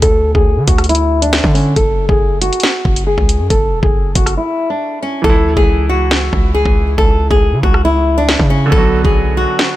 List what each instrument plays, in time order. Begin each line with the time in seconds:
0.02 808-style bass D2, nylon-string guitar A4, kick, closed hi-hat
0.35 808-style bass D2, nylon-string guitar G#4, kick
0.57 808-style bass D3
0.68 808-style bass D2, nylon-string guitar F#4, kick, closed hi-hat
0.78 cross-stick, closed hi-hat
0.84 closed hi-hat
0.89 nylon-string guitar E4, closed hi-hat
0.95 closed hi-hat
1.22 nylon-string guitar D4, closed hi-hat
1.33 snare, closed hi-hat
1.44 808-style bass D3, kick
1.54 nylon-string guitar C#4, open hi-hat
1.76 808-style bass F#1, nylon-string guitar A4, kick, closed hi-hat
2.09 808-style bass F#1, nylon-string guitar G#4, kick
2.42 nylon-string guitar F#4, closed hi-hat
2.53 closed hi-hat
2.60 snare, closed hi-hat
2.67 closed hi-hat
2.85 808-style bass F#1, kick
2.96 closed hi-hat
3.07 nylon-string guitar G#4
3.18 808-style bass C#2, kick
3.29 closed hi-hat
3.40 808-style bass F#2
3.50 808-style bass F#1, nylon-string guitar A4, kick, closed hi-hat
3.72 808-style bass E1
3.83 808-style bass F#1, nylon-string guitar G#4, kick
4.15 808-style bass F#1, nylon-string guitar F#4, kick, closed hi-hat
4.26 cross-stick, closed hi-hat
4.37 nylon-string guitar E4
4.70 nylon-string guitar D4
5.02 nylon-string guitar C#4
5.22 808-style bass C#2, grand piano E3, nylon-string guitar A4, kick
5.30 grand piano E4
5.46 808-style bass D2
5.57 808-style bass C#2, nylon-string guitar G#4, kick
5.89 nylon-string guitar F#4
6.11 snare
6.33 808-style bass C#2, kick
6.55 nylon-string guitar G#4
6.65 808-style bass C#2, kick
6.98 808-style bass C#2, nylon-string guitar A4, kick
7.31 808-style bass C#2, nylon-string guitar G#4, kick
7.52 808-style bass C#3
7.63 808-style bass C#2, nylon-string guitar F#4, kick
7.74 cross-stick
7.85 nylon-string guitar E4
8.18 nylon-string guitar D4
8.29 snare
8.39 808-style bass C#3, kick
8.50 nylon-string guitar C#4
8.66 grand piano D3 F#3
8.72 808-style bass B1, grand piano B3, nylon-string guitar A4, kick
8.77 grand piano F#4
9.05 808-style bass B1, nylon-string guitar G#4, kick
9.37 nylon-string guitar F#4
9.59 snare